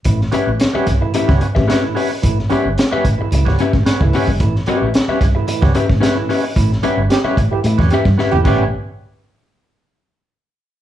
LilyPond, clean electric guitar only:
\new Staff \with { instrumentName = "Clean electric guitar" } { \time 4/4 \key a \mixolydian \tempo 4 = 111 r8 <cis' g' b' e''>16 r8 <cis' g' b' e''>16 r8 <cis' g' b' e''>16 r8 <cis' g' b' e''>16 <cis' g' b' e''>16 r16 <cis' g' b' e''>16 r16 | r8 <cis' g' b' e''>16 r8 <cis' g' b' e''>16 r4 <cis' g' b' e''>16 r8. <cis' g' b' e''>16 r16 | r8 <cis' g' b' e''>16 r8 <cis' g' b' e''>16 r4 <cis' g' b' e''>16 r16 <cis' g' b' e''>16 r16 <cis' g' b' e''>16 r16 | r8 <cis' g' b' e''>16 r8 <cis' g' b' e''>16 r4 <cis' g' b' e''>16 r16 <cis' g' b' e''>16 r16 <cis' g' b' e''>16 r16 |
r1 | }